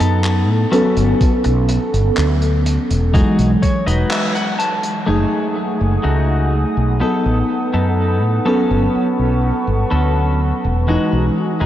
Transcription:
Already playing: fm electric piano F#3 B3 D#4 A4
0.00 fretless electric bass F#2, clean electric guitar B3 D#4 A4, closed hi-hat
0.23 clap, closed hi-hat
0.49 fretless electric bass A2
0.71 fm electric piano F#3 B3 C#4 A4, clean electric guitar B3 C#4 F#4 A4, closed hi-hat
0.97 fretless electric bass G1, closed hi-hat
1.21 kick, closed hi-hat
1.44 fretless electric bass B1, muted clean electric guitar stroke, closed hi-hat
1.69 muted clean electric guitar stroke, closed hi-hat
1.93 fretless electric bass G1, closed hi-hat
2.17 fretless electric bass D2, clap, closed hi-hat
2.42 closed hi-hat
2.66 closed hi-hat
2.90 fretless electric bass E1, closed hi-hat
3.13 fm electric piano E3 F#3 G#3, clean electric guitar D#4 F#4 G#4, kick, closed hi-hat
3.38 fretless electric bass B1, closed hi-hat
3.62 clean electric guitar C#5, kick, closed hi-hat
3.86 fretless electric bass E1, clean electric guitar D#4 F#4 B4 D#5, closed hi-hat
4.11 clean electric guitar E5, clap, closed hi-hat
4.35 clean electric guitar F#5, closed hi-hat
4.59 clean electric guitar A5, closed hi-hat
4.83 muted clean electric guitar stroke, closed hi-hat
5.06 fretless electric bass F#1, fm electric piano F#3 A3 D#4 G#4, clean electric guitar A3 D#4 G#4, ambient pad A3 F#5 G#5 D#6
5.81 fretless electric bass F#1
6.03 fretless electric bass C#2, clean electric guitar A3 D#4 F#4
6.77 fretless electric bass B1
7.00 fm electric piano F#3 B3 D#4 A4, clean electric guitar B3 D#4 A4, ambient pad B4 F#5 A5, muted fretless electric bass stroke
7.25 fretless electric bass A1
7.74 fretless electric bass F#2, clean electric guitar B3 D#4 A4
8.22 fretless electric bass A2
8.45 fm electric piano F#3 B3 C#4 A4, clean electric guitar B3 C#4 F#4 A4, ambient pad A5 C#6
8.71 fretless electric bass G1
8.95 muted fretless electric bass stroke
9.19 fretless electric bass B1
9.67 fretless electric bass G1
9.91 fretless electric bass D2, clean electric guitar B3 C#4 F#4 A4
10.64 fretless electric bass E1
10.87 fm electric piano E3 G#3 D#4 F#4, clean electric guitar G#3 D#4 F#4, ambient pad F#4 G#5 D#6
11.12 fretless electric bass B1
11.60 fretless electric bass E1, clean electric guitar G#3 D#4 G#4

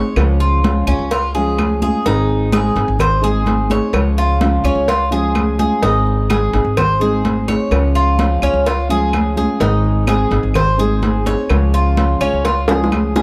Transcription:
Already playing: nylon-string guitar C4 D#4 G#4, cuban tres C#5
0.16 upright bass C#2, nylon-string guitar C#3 F3 G#3 C#4 F4, cowbell, high conga, claves
0.40 cuban tres F4, high conga
0.63 nylon-string guitar C#3 F3 G#3 C#4 F4, cowbell, high conga
0.87 upright bass C#2, nylon-string guitar G#3 C#4 F4, cuban tres C#4, high conga, claves
0.99 upright bass C#2
1.11 cuban tres F4, muted nylon-string guitar stroke, cowbell, high conga
1.35 nylon-string guitar F3 G#3 C#4 F4, cuban tres G#4, high conga
1.58 nylon-string guitar G#3 C#4 F4, cowbell, high conga, claves
1.82 nylon-string guitar G#3 C#4 F4, cuban tres G#4, high conga
2.06 upright bass G#1, nylon-string guitar D#3 G#3 C4 D#4 G#4, cuban tres D#4, cowbell, high conga
2.29 high conga
2.52 nylon-string guitar D#3 G#3 C4 D#4 G#4, cuban tres G#4, cowbell, high conga, claves
2.75 upright bass G#1, nylon-string guitar C4 D#4 G#4, cowbell, high conga
2.88 upright bass G#1
2.99 cuban tres C5, muted nylon-string guitar stroke, cowbell, high conga, low conga, claves
3.22 nylon-string guitar G#3 C4 D#4 G#4, cuban tres G#4, high conga
3.45 nylon-string guitar G#3 C4 D#4 G#4, cowbell, high conga
3.70 nylon-string guitar C4 D#4 G#4, cuban tres C#5, cowbell, high conga
3.93 upright bass C#2, nylon-string guitar C#3 F3 G#3 C#4 F4, cowbell, high conga, claves
4.17 cuban tres F4, high conga
4.40 nylon-string guitar C#3 F3 G#3 C#4 F4, cowbell, high conga
4.64 upright bass C#2, nylon-string guitar G#3 C#4 F4, cuban tres C#4, high conga, claves
4.75 upright bass C#2
4.87 cuban tres F4, muted nylon-string guitar stroke, cowbell, high conga
5.11 nylon-string guitar F3 G#3 C#4 F4, cuban tres G#4, high conga
5.35 nylon-string guitar F3 G#3 C#4 F4, cowbell, high conga, claves
5.58 nylon-string guitar G#3 C#4 F4, cuban tres G#4, high conga
5.82 upright bass G#1, nylon-string guitar D#3 G#3 C4 D#4 G#4, cuban tres D#4, cowbell
6.07 high conga
6.30 nylon-string guitar D#3 G#3 C4 D#4 G#4, cuban tres G#4, cowbell, high conga, claves
6.53 upright bass G#1, nylon-string guitar C4 D#4 G#4, cowbell, high conga
6.65 upright bass G#1
6.77 cuban tres C5, muted nylon-string guitar stroke, cowbell, high conga, low conga, claves
7.00 nylon-string guitar G#3 C4 D#4 G#4, cuban tres G#4, high conga
7.24 nylon-string guitar G#3 C4 D#4 G#4, cowbell, high conga
7.48 nylon-string guitar C4 D#4 G#4, cuban tres C#5, cowbell, high conga
7.70 upright bass C#2, nylon-string guitar C#3 F3 G#3 C#4 F4, cowbell, high conga, claves
7.95 cuban tres F4, high conga
8.18 nylon-string guitar C#3 F3 G#3 C#4 F4, cowbell, high conga
8.42 upright bass C#2, nylon-string guitar G#3 C#4 F4, cuban tres C#4, high conga, claves
8.54 upright bass C#2
8.66 cuban tres F4, muted nylon-string guitar stroke, cowbell, high conga
8.89 nylon-string guitar F3 G#3 C#4 F4, cuban tres G#4, high conga
9.13 nylon-string guitar F3 G#3 C#4 F4, cowbell, high conga, claves
9.36 nylon-string guitar G#3 C#4 F4, cuban tres G#4, high conga
9.60 upright bass G#1, nylon-string guitar D#3 G#3 C4 D#4 G#4, cuban tres D#4, cowbell
9.85 high conga
10.06 nylon-string guitar D#3 G#3 C4 D#4 G#4, cuban tres G#4, cowbell, high conga, claves
10.30 upright bass G#1, nylon-string guitar C4 D#4 G#4, cowbell, high conga
10.43 upright bass G#1
10.54 cuban tres C5, muted nylon-string guitar stroke, cowbell, high conga, low conga, claves
10.78 nylon-string guitar G#3 C4 D#4 G#4, cuban tres G#4, high conga
11.02 nylon-string guitar G#3 C4 D#4 G#4, cowbell, high conga
11.26 nylon-string guitar C4 D#4 G#4, cuban tres C#5, cowbell, high conga
11.49 upright bass C#2, nylon-string guitar C#3 F3 G#3 C#4 F4, cowbell, high conga, claves
11.73 cuban tres F4, high conga
11.97 nylon-string guitar C#3 F3 G#3 C#4 F4, cowbell, high conga
12.21 upright bass C#2, nylon-string guitar G#3 C#4 F4, cuban tres C#4, high conga, claves
12.33 upright bass C#2
12.45 cuban tres F4, muted nylon-string guitar stroke, cowbell, high conga
12.67 nylon-string guitar F3 G#3 C#4 F4, cuban tres G#4, high bongo, high conga
12.84 low bongo
12.91 nylon-string guitar F3 G#3 C#4 F4, cowbell, high conga, claves
13.16 nylon-string guitar G#3 C#4 F4, cuban tres G#4, low bongo, high conga

